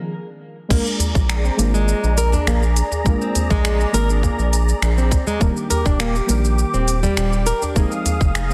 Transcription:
0.00 0.68 D#3 medium
0.00 0.72 F3 medium
0.00 0.69 G#3 medium
0.00 0.72 C4 medium
0.00 0.72 D#4 medium
0.00 0.72 G#4 loud
0.69 0.80 A#1 medium
0.69 1.54 G#3 medium
0.69 1.55 A#3 medium
0.69 0.85 A#3 medium
0.69 1.55 D4 medium
0.69 1.56 F4 medium
0.69 5.37 G#4 medium
0.69 5.37 D5 medium
0.69 5.37 A#5 medium
0.69 kick loud
0.69 crash loud
0.69 shaker soft
0.73 1.56 A#4 loud
0.86 shaker soft
1.00 open hi-hat medium
1.00 djembe bass medium
1.00 shaker medium
1.14 1.50 A#1 medium
1.14 kick loud
1.14 djembe tone medium
1.14 shaker soft
1.29 finger snap loud
1.29 shaker soft
1.45 1.73 C4 medium
1.45 shaker soft
1.57 1.94 G#1 loud
1.57 3.01 G#3 medium
1.57 3.02 A#3 medium
1.57 3.02 D4 medium
1.57 3.03 F4 medium
1.57 3.03 A#4 medium
1.57 open hi-hat medium
1.57 shaker medium
1.74 2.16 G#3 medium
1.74 shaker soft
1.88 shaker soft
2.04 2.38 A#1 loud
2.04 shaker soft
2.17 2.32 A#4 loud
2.17 open hi-hat medium
2.17 djembe slap medium
2.17 shaker medium
2.32 2.46 D4 medium
2.32 djembe slap medium
2.32 djembe tone medium
2.32 djembe bass loud
2.32 shaker soft
2.47 2.82 A#1 loud
2.47 2.62 A#3 medium
2.47 finger snap loud
2.47 shaker soft
2.63 shaker soft
2.76 open hi-hat medium
2.76 shaker medium
2.92 djembe tone medium
2.92 shaker soft
3.04 3.15 A#1 loud
3.04 3.90 G#3 medium
3.04 3.90 A#3 medium
3.04 3.91 D4 medium
3.04 3.91 F4 medium
3.04 kick loud
3.04 shaker soft
3.08 3.92 A#4 loud
3.21 3.49 C4 medium
3.21 shaker soft
3.35 open hi-hat medium
3.35 djembe bass medium
3.35 shaker medium
3.51 3.85 A#1 medium
3.51 3.93 G#3 loud
3.51 kick loud
3.51 djembe tone medium
3.51 shaker soft
3.65 finger snap loud
3.65 shaker soft
3.80 shaker soft
3.92 4.29 G#1 loud
3.92 5.37 G#3 medium
3.92 5.37 A#3 medium
3.92 5.38 D4 medium
3.92 5.38 F4 medium
3.92 4.09 A#4 loud
3.92 open hi-hat medium
3.92 shaker medium
3.96 5.39 A#4 medium
4.10 4.22 D4 medium
4.10 shaker soft
4.23 4.38 A#3 medium
4.23 kick medium
4.23 djembe tone medium
4.23 shaker soft
4.39 4.74 A#1 loud
4.39 shaker soft
4.53 open hi-hat medium
4.53 shaker medium
4.69 shaker soft
4.82 5.17 A#1 loud
4.82 finger snap loud
4.82 shaker soft
4.98 5.26 C4 medium
4.98 shaker soft
5.11 kick loud
5.11 open hi-hat medium
5.11 djembe slap soft
5.11 shaker medium
5.27 5.41 G#3 medium
5.27 djembe tone medium
5.27 shaker soft
5.39 5.50 D#1 medium
5.39 6.26 D#3 medium
5.39 6.25 G3 medium
5.39 6.25 A#3 medium
5.39 6.26 D4 medium
5.39 7.74 G4 medium
5.39 6.27 A#4 medium
5.39 7.74 D6 medium
5.39 kick loud
5.39 shaker soft
5.57 shaker soft
5.70 5.85 A#4 loud
5.70 open hi-hat medium
5.70 djembe bass medium
5.70 shaker medium
5.86 6.21 D#1 medium
5.86 5.99 D4 medium
5.86 kick loud
5.86 djembe tone medium
5.86 shaker soft
6.00 6.15 A#3 medium
6.00 finger snap loud
6.00 shaker soft
6.15 shaker soft
6.26 6.64 A#1 loud
6.26 7.73 D#3 medium
6.26 7.72 G3 medium
6.26 7.72 A#3 medium
6.26 7.73 D4 medium
6.26 open hi-hat medium
6.26 shaker medium
6.31 7.74 A#4 loud
6.45 shaker soft
6.59 shaker soft
6.74 7.09 D#1 loud
6.74 7.02 C4 medium
6.74 shaker soft
6.88 open hi-hat medium
6.88 djembe slap medium
6.88 shaker medium
7.03 7.45 G3 loud
7.03 djembe slap soft
7.03 djembe tone medium
7.03 djembe bass medium
7.03 shaker soft
7.17 7.53 D#1 loud
7.17 finger snap loud
7.17 shaker soft
7.33 shaker soft
7.47 7.61 A#4 loud
7.47 open hi-hat medium
7.47 shaker medium
7.62 7.75 D4 medium
7.62 djembe tone medium
7.62 shaker soft
7.74 7.85 F1 loud
7.74 8.54 F3 medium
7.74 8.54 G#3 medium
7.74 7.91 A#3 medium
7.74 8.54 C4 medium
7.74 8.54 D#4 medium
7.74 8.54 G#4 medium
7.74 8.54 G#4 loud
7.74 8.54 F5 medium
7.74 8.54 D#6 medium
7.74 kick loud
7.74 shaker soft
7.92 shaker soft
8.06 open hi-hat medium
8.06 djembe bass medium
8.06 shaker medium
8.21 8.54 F1 medium
8.21 kick loud
8.21 djembe tone medium
8.21 shaker soft
8.35 finger snap loud
8.35 shaker soft
8.50 8.54 C4 medium
8.50 shaker soft

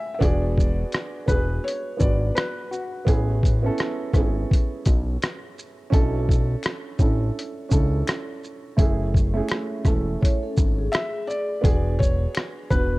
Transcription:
0.00 0.23 G#3 medium
0.00 0.23 A3 medium
0.00 0.23 C#4 medium
0.00 0.23 E4 medium
0.00 0.22 G#4 medium
0.00 0.13 E5 loud
0.00 0.18 G#5 medium
0.14 0.20 E5 medium
0.19 0.85 E1 loud
0.19 1.13 B3 loud
0.19 1.14 D4 loud
0.19 1.14 F#4 loud
0.19 1.15 G#4 loud
0.19 1.31 D5 medium
0.19 kick loud
0.19 closed hi-hat medium
0.58 kick medium
0.58 shaker soft
0.92 cross-stick loud
0.92 closed hi-hat medium
1.26 1.60 E1 medium
1.26 1.89 B3 medium
1.26 1.90 D4 soft
1.26 1.91 F#4 medium
1.26 1.91 G#4 medium
1.26 1.65 B4 medium
1.26 kick medium
1.26 shaker soft
1.64 2.01 C#5 medium
1.64 closed hi-hat medium
1.97 2.32 G#1 medium
1.97 2.92 B3 medium
1.97 2.92 D4 medium
1.97 2.93 F#4 medium
1.97 2.93 B4 medium
1.97 2.36 D5 medium
1.97 kick medium
1.97 shaker medium
2.35 2.72 B4 medium
2.35 cross-stick loud
2.35 closed hi-hat medium
2.71 4.10 F#4 medium
2.71 shaker soft
3.05 3.70 A1 loud
3.05 3.52 B3 medium
3.05 3.53 C#4 medium
3.05 3.54 E4 medium
3.05 3.54 G#4 loud
3.05 kick loud
3.05 closed hi-hat medium
3.43 kick medium
3.43 closed hi-hat soft
3.43 shaker soft
3.63 4.06 B3 medium
3.63 4.07 C#4 medium
3.63 4.07 E4 medium
3.63 4.08 A4 loud
3.78 cross-stick medium
3.78 closed hi-hat soft
4.13 4.46 G#1 medium
4.13 5.35 B3 medium
4.13 5.36 C#4 medium
4.13 5.36 E4 medium
4.13 5.37 G#4 medium
4.13 kick medium
4.13 cross-stick soft
4.13 shaker soft
4.51 kick medium
4.51 closed hi-hat medium
4.86 5.18 B1 medium
4.86 kick medium
4.86 closed hi-hat medium
4.86 shaker medium
5.22 cross-stick loud
5.22 closed hi-hat medium
5.58 shaker soft
5.90 6.56 B1 loud
5.90 6.85 C#4 loud
5.90 6.85 D4 medium
5.90 6.86 E4 medium
5.90 6.86 A4 loud
5.90 kick loud
5.90 closed hi-hat medium
6.29 kick medium
6.29 shaker soft
6.63 finger snap medium
6.63 cross-stick medium
6.63 closed hi-hat medium
6.99 7.31 A1 medium
6.99 7.61 C#4 medium
6.99 7.62 D4 medium
6.99 7.62 E4 medium
6.99 7.63 A4 medium
6.99 kick medium
6.99 shaker soft
7.39 closed hi-hat medium
7.69 8.03 C#2 medium
7.69 8.63 C#4 medium
7.69 8.64 D4 medium
7.69 8.64 E4 medium
7.69 8.65 A4 medium
7.69 kick medium
7.69 shaker medium
8.07 finger snap medium
8.07 cross-stick loud
8.07 closed hi-hat medium
8.44 shaker soft
8.77 9.41 F#1 loud
8.77 9.24 A3 medium
8.77 9.25 C#4 medium
8.77 9.25 E4 medium
8.77 9.26 G#4 medium
8.77 kick loud
8.77 closed hi-hat medium
9.14 kick medium
9.14 shaker soft
9.34 9.77 A3 medium
9.34 9.78 C#4 medium
9.34 9.78 E4 medium
9.34 9.79 G#4 medium
9.49 finger snap medium
9.49 cross-stick medium
9.49 closed hi-hat soft
9.84 10.17 E1 loud
9.84 11.06 A3 medium
9.84 11.07 C#4 medium
9.84 11.07 E4 medium
9.84 11.08 A4 medium
9.84 kick medium
9.84 cross-stick soft
9.84 shaker soft
10.21 10.42 E4 medium
10.21 10.42 C#5 medium
10.21 kick medium
10.21 closed hi-hat medium
10.43 10.77 C#4 medium
10.43 10.77 A4 medium
10.57 10.89 G#1 medium
10.57 kick medium
10.57 shaker medium
10.79 11.60 G#4 medium
10.92 11.29 E5 loud
10.92 finger snap medium
10.92 cross-stick loud
10.92 closed hi-hat medium
11.27 12.01 D5 loud
11.27 shaker soft
11.61 12.27 E1 loud
11.61 12.56 B3 medium
11.61 12.57 D4 medium
11.61 12.57 F#4 medium
11.61 12.58 G#4 loud
11.61 kick loud
11.61 closed hi-hat medium
11.99 12.73 C#5 loud
11.99 kick medium
11.99 shaker soft
12.35 finger snap medium
12.35 cross-stick loud
12.35 closed hi-hat medium
12.70 12.99 E1 loud
12.70 12.99 B3 medium
12.70 12.99 D4 medium
12.70 12.99 F#4 medium
12.70 12.99 B4 loud
12.70 12.99 B4 medium
12.70 kick medium
12.70 shaker soft

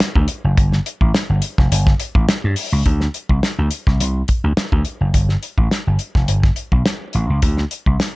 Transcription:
0.00 muted slap bass stroke soft
0.00 snare loud
0.00 closed hi-hat medium
0.15 0.25 D2 medium
0.15 kick medium
0.28 closed hi-hat medium
0.44 0.58 F#1 medium
0.57 0.78 G1 loud
0.57 kick loud
0.57 closed hi-hat medium
0.72 snare soft
0.86 closed hi-hat medium
1.01 1.11 A1 loud
1.01 kick medium
1.15 snare medium
1.15 closed hi-hat medium
1.30 1.39 G1 medium
1.42 closed hi-hat medium
1.58 1.68 F1 loud
1.58 kick loud
1.58 snare soft
1.71 1.92 G1 medium
1.71 closed hi-hat loud
1.87 kick loud
1.87 snare soft
2.00 closed hi-hat medium
2.15 2.25 A1 medium
2.15 kick loud
2.29 snare loud
2.29 closed hi-hat medium
2.44 2.54 G2 medium
2.56 open hi-hat medium
2.72 2.82 C#2 loud
2.86 3.07 D2 loud
2.86 kick medium
2.86 closed hi-hat medium
3.01 snare soft
3.14 closed hi-hat medium
3.29 3.39 C2 medium
3.29 kick medium
3.43 snare medium
3.43 closed hi-hat medium
3.59 3.68 D2 medium
3.71 closed hi-hat medium
3.87 3.96 C2 medium
3.87 kick medium
3.87 snare soft
4.00 4.21 C2 medium
4.00 closed hi-hat loud
4.28 kick medium
4.28 closed hi-hat medium
4.44 4.54 D2 medium
4.57 snare loud
4.57 closed hi-hat medium
4.72 4.82 D2 medium
4.72 kick medium
4.85 closed hi-hat medium
5.01 5.11 F#1 medium
5.14 5.35 G1 medium
5.14 kick medium
5.14 closed hi-hat medium
5.29 snare soft
5.43 closed hi-hat medium
5.58 5.67 A1 medium
5.58 kick medium
5.71 snare medium
5.71 closed hi-hat medium
5.87 5.97 G1 medium
5.99 closed hi-hat medium
6.15 6.25 F1 medium
6.15 kick medium
6.15 snare soft
6.28 6.49 G1 medium
6.28 closed hi-hat loud
6.43 kick loud
6.43 snare soft
6.56 closed hi-hat medium
6.72 6.82 B1 medium
6.72 kick medium
6.86 snare loud
6.86 closed hi-hat medium
7.13 7.26 A1 medium
7.13 closed hi-hat medium
7.30 7.39 C#2 medium
7.42 7.64 D2 medium
7.42 kick loud
7.42 closed hi-hat medium
7.57 snare soft
7.71 closed hi-hat medium
7.86 7.96 C2 medium
7.86 kick medium
8.00 snare medium
8.00 closed hi-hat medium

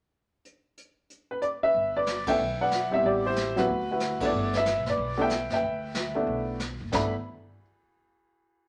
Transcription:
0.45 closed hi-hat soft
0.77 closed hi-hat medium
1.10 closed hi-hat medium
1.31 1.42 B4 medium
1.42 1.47 D5 medium
1.42 closed hi-hat medium
1.63 1.95 B4 medium
1.63 1.96 E5 medium
1.74 2.36 G1 medium
1.74 brush sweep soft
1.97 2.27 B4 medium
1.97 2.29 D5 medium
2.06 snare medium
2.06 hi-hat pedal medium
2.27 2.38 A3 medium
2.27 2.38 B3 medium
2.27 2.38 D4 medium
2.27 2.38 E4 medium
2.27 2.60 B4 medium
2.27 2.89 E5 medium
2.27 2.58 G5 medium
2.27 kick medium
2.27 ride medium
2.39 3.00 B1 medium
2.39 brush sweep soft
2.61 3.02 B4 medium
2.61 3.02 D5 medium
2.61 2.94 F#5 medium
2.71 snare soft
2.71 hi-hat pedal soft
2.91 3.33 G3 medium
2.91 3.33 B3 medium
2.91 3.34 C4 medium
2.91 3.24 E4 medium
2.91 3.04 E5 medium
3.03 3.65 A1 medium
3.03 3.24 G4 medium
3.03 3.26 D5 medium
3.03 brush sweep soft
3.26 3.55 E4 medium
3.26 3.66 G4 medium
3.26 3.59 C5 medium
3.36 snare medium
3.36 hi-hat pedal medium
3.56 3.67 F#3 medium
3.56 3.68 B3 medium
3.56 3.68 C4 medium
3.56 3.68 E4 medium
3.56 3.90 F#4 medium
3.56 3.91 B4 loud
3.56 snare soft
3.68 4.17 D2 medium
3.68 brush sweep soft
3.91 4.21 E4 medium
3.91 4.32 F#4 medium
3.91 4.23 B4 medium
4.00 snare medium
4.00 hi-hat pedal medium
4.20 4.63 A3 medium
4.20 4.63 B3 medium
4.20 4.63 D4 medium
4.20 4.64 E4 medium
4.20 4.55 B4 medium
4.20 muted upright bass stroke soft
4.20 kick medium
4.20 ride medium
4.25 4.56 D5 medium
4.32 4.73 G1 medium
4.32 brush sweep soft
4.53 4.87 B4 medium
4.53 4.86 E5 loud
4.53 snare soft
4.66 snare medium
4.66 hi-hat pedal medium
4.76 4.86 B1 medium
4.86 4.97 F#1 medium
4.86 5.19 B4 medium
4.86 5.21 D5 medium
4.86 snare soft
4.97 5.47 B1 medium
4.97 brush sweep soft
5.17 5.29 A3 medium
5.17 5.29 B3 medium
5.17 5.29 D4 medium
5.17 5.29 E4 medium
5.17 5.52 B4 medium
5.17 5.51 E5 medium
5.22 5.50 G5 medium
5.30 snare medium
5.30 hi-hat pedal medium
5.50 5.61 F#1 medium
5.50 6.58 B4 medium
5.50 6.57 E5 medium
5.50 6.58 G5 medium
5.50 snare soft
5.61 6.24 D2 medium
5.61 brush sweep soft
5.95 snare medium
5.95 hi-hat pedal medium
6.15 6.57 A3 medium
6.15 6.58 B3 medium
6.15 6.58 D4 soft
6.15 6.58 E4 medium
6.27 6.76 B1 medium
6.27 brush sweep soft
6.60 snare soft
6.60 hi-hat pedal soft
6.81 6.92 F#1 medium
6.92 7.11 G1 medium
6.92 7.11 A3 medium
6.92 7.10 B3 medium
6.92 7.11 D4 medium
6.92 7.11 E4 medium
6.92 7.13 B5 medium
6.92 kick medium
6.92 snare medium
6.92 crash medium

